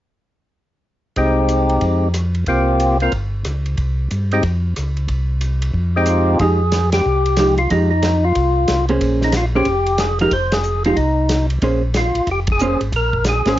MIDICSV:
0, 0, Header, 1, 5, 480
1, 0, Start_track
1, 0, Key_signature, -4, "minor"
1, 0, Tempo, 326619
1, 1722, Time_signature, 4, 2, 24, 8
1, 19976, End_track
2, 0, Start_track
2, 0, Title_t, "Tonewheel organ"
2, 0, Program_c, 0, 16
2, 1720, Note_on_c, 0, 56, 44
2, 1725, Note_on_c, 0, 60, 42
2, 1733, Note_on_c, 0, 63, 39
2, 1736, Note_on_c, 0, 67, 48
2, 3059, Note_off_c, 0, 56, 0
2, 3062, Note_off_c, 0, 60, 0
2, 3065, Note_off_c, 0, 63, 0
2, 3067, Note_off_c, 0, 67, 0
2, 3642, Note_on_c, 0, 58, 46
2, 3649, Note_on_c, 0, 60, 38
2, 3655, Note_on_c, 0, 65, 41
2, 3665, Note_on_c, 0, 67, 51
2, 4370, Note_off_c, 0, 58, 0
2, 4373, Note_off_c, 0, 60, 0
2, 4376, Note_off_c, 0, 65, 0
2, 4381, Note_off_c, 0, 67, 0
2, 4436, Note_on_c, 0, 58, 52
2, 4438, Note_on_c, 0, 60, 49
2, 4445, Note_on_c, 0, 65, 49
2, 4455, Note_on_c, 0, 70, 60
2, 4591, Note_off_c, 0, 58, 0
2, 4592, Note_off_c, 0, 60, 0
2, 4596, Note_off_c, 0, 65, 0
2, 4600, Note_off_c, 0, 70, 0
2, 6356, Note_on_c, 0, 56, 55
2, 6359, Note_on_c, 0, 60, 52
2, 6371, Note_on_c, 0, 63, 50
2, 6373, Note_on_c, 0, 67, 62
2, 6512, Note_off_c, 0, 56, 0
2, 6514, Note_off_c, 0, 60, 0
2, 6519, Note_off_c, 0, 63, 0
2, 6521, Note_off_c, 0, 67, 0
2, 8761, Note_on_c, 0, 56, 62
2, 8766, Note_on_c, 0, 60, 62
2, 8774, Note_on_c, 0, 63, 58
2, 8775, Note_on_c, 0, 67, 71
2, 8944, Note_on_c, 0, 65, 79
2, 9377, Note_off_c, 0, 56, 0
2, 9380, Note_off_c, 0, 60, 0
2, 9384, Note_off_c, 0, 63, 0
2, 9384, Note_off_c, 0, 67, 0
2, 9408, Note_on_c, 0, 68, 89
2, 9431, Note_off_c, 0, 65, 0
2, 10139, Note_off_c, 0, 68, 0
2, 10191, Note_on_c, 0, 67, 91
2, 11093, Note_off_c, 0, 67, 0
2, 11148, Note_on_c, 0, 65, 77
2, 11312, Note_off_c, 0, 65, 0
2, 11331, Note_on_c, 0, 63, 72
2, 11601, Note_off_c, 0, 63, 0
2, 11619, Note_on_c, 0, 63, 76
2, 12114, Note_on_c, 0, 65, 82
2, 12120, Note_off_c, 0, 63, 0
2, 13013, Note_off_c, 0, 65, 0
2, 13581, Note_on_c, 0, 63, 67
2, 13728, Note_off_c, 0, 63, 0
2, 13766, Note_on_c, 0, 65, 74
2, 13894, Note_off_c, 0, 65, 0
2, 14048, Note_on_c, 0, 67, 79
2, 14690, Note_on_c, 0, 68, 86
2, 14711, Note_off_c, 0, 67, 0
2, 14971, Note_off_c, 0, 68, 0
2, 15011, Note_on_c, 0, 70, 89
2, 15178, Note_off_c, 0, 70, 0
2, 15182, Note_on_c, 0, 72, 93
2, 15479, Note_on_c, 0, 68, 78
2, 15486, Note_off_c, 0, 72, 0
2, 15919, Note_off_c, 0, 68, 0
2, 15961, Note_on_c, 0, 65, 76
2, 16116, Note_off_c, 0, 65, 0
2, 16116, Note_on_c, 0, 63, 62
2, 16848, Note_off_c, 0, 63, 0
2, 17592, Note_on_c, 0, 65, 70
2, 18068, Note_off_c, 0, 65, 0
2, 18095, Note_on_c, 0, 67, 74
2, 18220, Note_off_c, 0, 67, 0
2, 18395, Note_on_c, 0, 68, 68
2, 18816, Note_off_c, 0, 68, 0
2, 19047, Note_on_c, 0, 70, 82
2, 19469, Note_off_c, 0, 70, 0
2, 19527, Note_on_c, 0, 68, 80
2, 19976, Note_off_c, 0, 68, 0
2, 19976, End_track
3, 0, Start_track
3, 0, Title_t, "Hollow-body jazz guitar"
3, 0, Program_c, 1, 26
3, 9419, Note_on_c, 1, 53, 43
3, 9424, Note_on_c, 1, 56, 45
3, 9428, Note_on_c, 1, 63, 47
3, 9442, Note_on_c, 1, 67, 53
3, 9689, Note_off_c, 1, 53, 0
3, 9692, Note_off_c, 1, 56, 0
3, 9694, Note_off_c, 1, 63, 0
3, 9701, Note_off_c, 1, 67, 0
3, 10855, Note_on_c, 1, 53, 52
3, 10862, Note_on_c, 1, 56, 53
3, 10868, Note_on_c, 1, 63, 52
3, 10871, Note_on_c, 1, 67, 58
3, 11127, Note_off_c, 1, 53, 0
3, 11130, Note_off_c, 1, 56, 0
3, 11133, Note_off_c, 1, 63, 0
3, 11135, Note_off_c, 1, 67, 0
3, 11325, Note_on_c, 1, 53, 46
3, 11337, Note_on_c, 1, 56, 56
3, 11345, Note_on_c, 1, 63, 65
3, 11350, Note_on_c, 1, 67, 57
3, 11601, Note_off_c, 1, 53, 0
3, 11607, Note_off_c, 1, 56, 0
3, 11612, Note_off_c, 1, 63, 0
3, 11614, Note_off_c, 1, 67, 0
3, 13069, Note_on_c, 1, 58, 54
3, 13078, Note_on_c, 1, 61, 62
3, 13082, Note_on_c, 1, 68, 58
3, 13083, Note_on_c, 1, 72, 59
3, 13688, Note_off_c, 1, 58, 0
3, 13692, Note_off_c, 1, 61, 0
3, 13695, Note_off_c, 1, 68, 0
3, 13695, Note_off_c, 1, 72, 0
3, 14040, Note_on_c, 1, 58, 65
3, 14050, Note_on_c, 1, 61, 71
3, 14056, Note_on_c, 1, 68, 66
3, 14058, Note_on_c, 1, 72, 75
3, 14191, Note_off_c, 1, 58, 0
3, 14196, Note_off_c, 1, 61, 0
3, 14199, Note_off_c, 1, 68, 0
3, 14200, Note_off_c, 1, 72, 0
3, 15004, Note_on_c, 1, 53, 67
3, 15009, Note_on_c, 1, 56, 67
3, 15016, Note_on_c, 1, 63, 79
3, 15021, Note_on_c, 1, 67, 84
3, 15152, Note_off_c, 1, 53, 0
3, 15155, Note_off_c, 1, 56, 0
3, 15158, Note_off_c, 1, 63, 0
3, 15161, Note_off_c, 1, 67, 0
3, 15956, Note_on_c, 1, 53, 62
3, 15962, Note_on_c, 1, 56, 68
3, 15965, Note_on_c, 1, 63, 75
3, 15975, Note_on_c, 1, 67, 77
3, 16108, Note_off_c, 1, 53, 0
3, 16111, Note_off_c, 1, 56, 0
3, 16112, Note_off_c, 1, 63, 0
3, 16117, Note_off_c, 1, 67, 0
3, 17087, Note_on_c, 1, 58, 54
3, 17093, Note_on_c, 1, 61, 55
3, 17100, Note_on_c, 1, 68, 56
3, 17105, Note_on_c, 1, 72, 68
3, 17358, Note_off_c, 1, 58, 0
3, 17361, Note_off_c, 1, 61, 0
3, 17365, Note_off_c, 1, 68, 0
3, 17367, Note_off_c, 1, 72, 0
3, 18538, Note_on_c, 1, 61, 53
3, 18541, Note_on_c, 1, 58, 49
3, 18552, Note_on_c, 1, 68, 58
3, 18558, Note_on_c, 1, 72, 61
3, 18802, Note_off_c, 1, 61, 0
3, 18804, Note_off_c, 1, 58, 0
3, 18810, Note_off_c, 1, 68, 0
3, 18813, Note_off_c, 1, 72, 0
3, 19795, Note_on_c, 1, 58, 57
3, 19807, Note_on_c, 1, 61, 60
3, 19809, Note_on_c, 1, 68, 62
3, 19810, Note_on_c, 1, 72, 64
3, 19944, Note_off_c, 1, 58, 0
3, 19950, Note_off_c, 1, 61, 0
3, 19951, Note_off_c, 1, 68, 0
3, 19952, Note_off_c, 1, 72, 0
3, 19976, End_track
4, 0, Start_track
4, 0, Title_t, "Tonewheel organ"
4, 0, Program_c, 2, 16
4, 1709, Note_on_c, 2, 36, 66
4, 2629, Note_off_c, 2, 36, 0
4, 2672, Note_on_c, 2, 41, 68
4, 3591, Note_off_c, 2, 41, 0
4, 3627, Note_on_c, 2, 36, 73
4, 4549, Note_off_c, 2, 36, 0
4, 4595, Note_on_c, 2, 31, 64
4, 5047, Note_off_c, 2, 31, 0
4, 5077, Note_on_c, 2, 37, 54
4, 5529, Note_off_c, 2, 37, 0
4, 5552, Note_on_c, 2, 36, 79
4, 6006, Note_off_c, 2, 36, 0
4, 6047, Note_on_c, 2, 43, 62
4, 6494, Note_off_c, 2, 43, 0
4, 6514, Note_on_c, 2, 41, 71
4, 6968, Note_off_c, 2, 41, 0
4, 7017, Note_on_c, 2, 37, 58
4, 7460, Note_off_c, 2, 37, 0
4, 7473, Note_on_c, 2, 36, 77
4, 8393, Note_off_c, 2, 36, 0
4, 8428, Note_on_c, 2, 41, 72
4, 9350, Note_off_c, 2, 41, 0
4, 9397, Note_on_c, 2, 41, 75
4, 10314, Note_off_c, 2, 41, 0
4, 10372, Note_on_c, 2, 36, 76
4, 11282, Note_off_c, 2, 36, 0
4, 11321, Note_on_c, 2, 41, 77
4, 12235, Note_off_c, 2, 41, 0
4, 12282, Note_on_c, 2, 36, 82
4, 12730, Note_off_c, 2, 36, 0
4, 12771, Note_on_c, 2, 36, 66
4, 13214, Note_off_c, 2, 36, 0
4, 13237, Note_on_c, 2, 34, 84
4, 14151, Note_off_c, 2, 34, 0
4, 14190, Note_on_c, 2, 29, 77
4, 15107, Note_off_c, 2, 29, 0
4, 15157, Note_on_c, 2, 29, 87
4, 16070, Note_off_c, 2, 29, 0
4, 16116, Note_on_c, 2, 36, 83
4, 17028, Note_off_c, 2, 36, 0
4, 17079, Note_on_c, 2, 34, 89
4, 17809, Note_off_c, 2, 34, 0
4, 17852, Note_on_c, 2, 34, 31
4, 17942, Note_off_c, 2, 34, 0
4, 18032, Note_on_c, 2, 29, 78
4, 18765, Note_off_c, 2, 29, 0
4, 18821, Note_on_c, 2, 32, 64
4, 18983, Note_off_c, 2, 32, 0
4, 18990, Note_on_c, 2, 34, 78
4, 19723, Note_off_c, 2, 34, 0
4, 19775, Note_on_c, 2, 32, 62
4, 19940, Note_off_c, 2, 32, 0
4, 19976, End_track
5, 0, Start_track
5, 0, Title_t, "Drums"
5, 1705, Note_on_c, 9, 51, 42
5, 1712, Note_on_c, 9, 36, 23
5, 1852, Note_off_c, 9, 51, 0
5, 1859, Note_off_c, 9, 36, 0
5, 2183, Note_on_c, 9, 44, 39
5, 2183, Note_on_c, 9, 51, 43
5, 2330, Note_off_c, 9, 44, 0
5, 2330, Note_off_c, 9, 51, 0
5, 2490, Note_on_c, 9, 51, 31
5, 2637, Note_off_c, 9, 51, 0
5, 2661, Note_on_c, 9, 51, 39
5, 2671, Note_on_c, 9, 36, 24
5, 2808, Note_off_c, 9, 51, 0
5, 2818, Note_off_c, 9, 36, 0
5, 3143, Note_on_c, 9, 44, 48
5, 3143, Note_on_c, 9, 51, 46
5, 3150, Note_on_c, 9, 37, 51
5, 3290, Note_off_c, 9, 44, 0
5, 3290, Note_off_c, 9, 51, 0
5, 3297, Note_off_c, 9, 37, 0
5, 3449, Note_on_c, 9, 51, 28
5, 3596, Note_off_c, 9, 51, 0
5, 3620, Note_on_c, 9, 51, 39
5, 3631, Note_on_c, 9, 36, 25
5, 3767, Note_off_c, 9, 51, 0
5, 3778, Note_off_c, 9, 36, 0
5, 4111, Note_on_c, 9, 44, 39
5, 4111, Note_on_c, 9, 51, 43
5, 4258, Note_off_c, 9, 44, 0
5, 4258, Note_off_c, 9, 51, 0
5, 4411, Note_on_c, 9, 51, 32
5, 4558, Note_off_c, 9, 51, 0
5, 4583, Note_on_c, 9, 51, 39
5, 4594, Note_on_c, 9, 36, 23
5, 4730, Note_off_c, 9, 51, 0
5, 4741, Note_off_c, 9, 36, 0
5, 5064, Note_on_c, 9, 44, 42
5, 5064, Note_on_c, 9, 51, 47
5, 5071, Note_on_c, 9, 37, 50
5, 5211, Note_off_c, 9, 44, 0
5, 5211, Note_off_c, 9, 51, 0
5, 5218, Note_off_c, 9, 37, 0
5, 5375, Note_on_c, 9, 51, 28
5, 5522, Note_off_c, 9, 51, 0
5, 5547, Note_on_c, 9, 51, 40
5, 5557, Note_on_c, 9, 36, 26
5, 5694, Note_off_c, 9, 51, 0
5, 5704, Note_off_c, 9, 36, 0
5, 6036, Note_on_c, 9, 44, 43
5, 6036, Note_on_c, 9, 51, 44
5, 6183, Note_off_c, 9, 44, 0
5, 6183, Note_off_c, 9, 51, 0
5, 6340, Note_on_c, 9, 51, 34
5, 6487, Note_off_c, 9, 51, 0
5, 6508, Note_on_c, 9, 51, 43
5, 6518, Note_on_c, 9, 36, 26
5, 6655, Note_off_c, 9, 51, 0
5, 6665, Note_off_c, 9, 36, 0
5, 6997, Note_on_c, 9, 44, 42
5, 6997, Note_on_c, 9, 51, 52
5, 7005, Note_on_c, 9, 37, 50
5, 7144, Note_off_c, 9, 44, 0
5, 7144, Note_off_c, 9, 51, 0
5, 7152, Note_off_c, 9, 37, 0
5, 7299, Note_on_c, 9, 51, 29
5, 7446, Note_off_c, 9, 51, 0
5, 7470, Note_on_c, 9, 51, 44
5, 7480, Note_on_c, 9, 36, 25
5, 7617, Note_off_c, 9, 51, 0
5, 7627, Note_off_c, 9, 36, 0
5, 7948, Note_on_c, 9, 44, 51
5, 7948, Note_on_c, 9, 51, 53
5, 8095, Note_off_c, 9, 44, 0
5, 8095, Note_off_c, 9, 51, 0
5, 8257, Note_on_c, 9, 51, 51
5, 8404, Note_off_c, 9, 51, 0
5, 8437, Note_on_c, 9, 36, 25
5, 8584, Note_off_c, 9, 36, 0
5, 8901, Note_on_c, 9, 44, 51
5, 8901, Note_on_c, 9, 51, 49
5, 8908, Note_on_c, 9, 37, 50
5, 9048, Note_off_c, 9, 44, 0
5, 9048, Note_off_c, 9, 51, 0
5, 9055, Note_off_c, 9, 37, 0
5, 9394, Note_on_c, 9, 51, 48
5, 9400, Note_on_c, 9, 36, 31
5, 9541, Note_off_c, 9, 51, 0
5, 9547, Note_off_c, 9, 36, 0
5, 9872, Note_on_c, 9, 44, 48
5, 9872, Note_on_c, 9, 51, 57
5, 9879, Note_on_c, 9, 38, 58
5, 10019, Note_off_c, 9, 44, 0
5, 10019, Note_off_c, 9, 51, 0
5, 10026, Note_off_c, 9, 38, 0
5, 10174, Note_on_c, 9, 51, 61
5, 10182, Note_on_c, 9, 38, 71
5, 10321, Note_off_c, 9, 51, 0
5, 10329, Note_off_c, 9, 38, 0
5, 10664, Note_on_c, 9, 51, 42
5, 10811, Note_off_c, 9, 51, 0
5, 10825, Note_on_c, 9, 44, 52
5, 10825, Note_on_c, 9, 51, 64
5, 10832, Note_on_c, 9, 38, 59
5, 10972, Note_off_c, 9, 44, 0
5, 10972, Note_off_c, 9, 51, 0
5, 10979, Note_off_c, 9, 38, 0
5, 11134, Note_on_c, 9, 51, 35
5, 11281, Note_off_c, 9, 51, 0
5, 11319, Note_on_c, 9, 51, 52
5, 11322, Note_on_c, 9, 36, 28
5, 11466, Note_off_c, 9, 51, 0
5, 11469, Note_off_c, 9, 36, 0
5, 11794, Note_on_c, 9, 44, 48
5, 11794, Note_on_c, 9, 51, 65
5, 11801, Note_on_c, 9, 38, 61
5, 11941, Note_off_c, 9, 44, 0
5, 11941, Note_off_c, 9, 51, 0
5, 11948, Note_off_c, 9, 38, 0
5, 12275, Note_on_c, 9, 51, 50
5, 12282, Note_on_c, 9, 36, 28
5, 12422, Note_off_c, 9, 51, 0
5, 12429, Note_off_c, 9, 36, 0
5, 12752, Note_on_c, 9, 44, 47
5, 12752, Note_on_c, 9, 51, 60
5, 12759, Note_on_c, 9, 38, 64
5, 12899, Note_off_c, 9, 44, 0
5, 12899, Note_off_c, 9, 51, 0
5, 12906, Note_off_c, 9, 38, 0
5, 13058, Note_on_c, 9, 51, 38
5, 13205, Note_off_c, 9, 51, 0
5, 13239, Note_on_c, 9, 51, 56
5, 13241, Note_on_c, 9, 36, 29
5, 13386, Note_off_c, 9, 51, 0
5, 13388, Note_off_c, 9, 36, 0
5, 13542, Note_on_c, 9, 38, 33
5, 13689, Note_off_c, 9, 38, 0
5, 13700, Note_on_c, 9, 44, 44
5, 13700, Note_on_c, 9, 51, 65
5, 13708, Note_on_c, 9, 38, 61
5, 13847, Note_off_c, 9, 44, 0
5, 13847, Note_off_c, 9, 51, 0
5, 13855, Note_off_c, 9, 38, 0
5, 14182, Note_on_c, 9, 51, 49
5, 14194, Note_on_c, 9, 36, 29
5, 14329, Note_off_c, 9, 51, 0
5, 14341, Note_off_c, 9, 36, 0
5, 14496, Note_on_c, 9, 51, 40
5, 14643, Note_off_c, 9, 51, 0
5, 14665, Note_on_c, 9, 44, 51
5, 14665, Note_on_c, 9, 51, 66
5, 14673, Note_on_c, 9, 38, 63
5, 14812, Note_off_c, 9, 44, 0
5, 14812, Note_off_c, 9, 51, 0
5, 14820, Note_off_c, 9, 38, 0
5, 14977, Note_on_c, 9, 51, 40
5, 15124, Note_off_c, 9, 51, 0
5, 15155, Note_on_c, 9, 51, 57
5, 15159, Note_on_c, 9, 36, 29
5, 15302, Note_off_c, 9, 51, 0
5, 15306, Note_off_c, 9, 36, 0
5, 15458, Note_on_c, 9, 51, 62
5, 15466, Note_on_c, 9, 38, 69
5, 15605, Note_off_c, 9, 51, 0
5, 15612, Note_off_c, 9, 38, 0
5, 15628, Note_on_c, 9, 44, 47
5, 15775, Note_off_c, 9, 44, 0
5, 15937, Note_on_c, 9, 51, 39
5, 16084, Note_off_c, 9, 51, 0
5, 16117, Note_on_c, 9, 51, 47
5, 16120, Note_on_c, 9, 36, 28
5, 16264, Note_off_c, 9, 51, 0
5, 16267, Note_off_c, 9, 36, 0
5, 16593, Note_on_c, 9, 44, 51
5, 16593, Note_on_c, 9, 51, 65
5, 16600, Note_on_c, 9, 38, 60
5, 16740, Note_off_c, 9, 44, 0
5, 16740, Note_off_c, 9, 51, 0
5, 16747, Note_off_c, 9, 38, 0
5, 16902, Note_on_c, 9, 51, 39
5, 17049, Note_off_c, 9, 51, 0
5, 17074, Note_on_c, 9, 51, 50
5, 17080, Note_on_c, 9, 36, 31
5, 17221, Note_off_c, 9, 51, 0
5, 17227, Note_off_c, 9, 36, 0
5, 17549, Note_on_c, 9, 44, 56
5, 17549, Note_on_c, 9, 51, 57
5, 17556, Note_on_c, 9, 38, 63
5, 17695, Note_off_c, 9, 44, 0
5, 17695, Note_off_c, 9, 51, 0
5, 17703, Note_off_c, 9, 38, 0
5, 17857, Note_on_c, 9, 51, 40
5, 18004, Note_off_c, 9, 51, 0
5, 18032, Note_on_c, 9, 51, 48
5, 18035, Note_on_c, 9, 36, 27
5, 18179, Note_off_c, 9, 51, 0
5, 18182, Note_off_c, 9, 36, 0
5, 18325, Note_on_c, 9, 51, 65
5, 18338, Note_on_c, 9, 36, 71
5, 18472, Note_off_c, 9, 51, 0
5, 18485, Note_off_c, 9, 36, 0
5, 18504, Note_on_c, 9, 44, 58
5, 18651, Note_off_c, 9, 44, 0
5, 18820, Note_on_c, 9, 51, 37
5, 18967, Note_off_c, 9, 51, 0
5, 18994, Note_on_c, 9, 51, 51
5, 18995, Note_on_c, 9, 36, 31
5, 19141, Note_off_c, 9, 51, 0
5, 19142, Note_off_c, 9, 36, 0
5, 19300, Note_on_c, 9, 36, 43
5, 19447, Note_off_c, 9, 36, 0
5, 19464, Note_on_c, 9, 44, 53
5, 19464, Note_on_c, 9, 51, 57
5, 19471, Note_on_c, 9, 38, 60
5, 19611, Note_off_c, 9, 44, 0
5, 19611, Note_off_c, 9, 51, 0
5, 19618, Note_off_c, 9, 38, 0
5, 19773, Note_on_c, 9, 51, 39
5, 19781, Note_on_c, 9, 38, 38
5, 19920, Note_off_c, 9, 51, 0
5, 19928, Note_off_c, 9, 38, 0
5, 19976, End_track
0, 0, End_of_file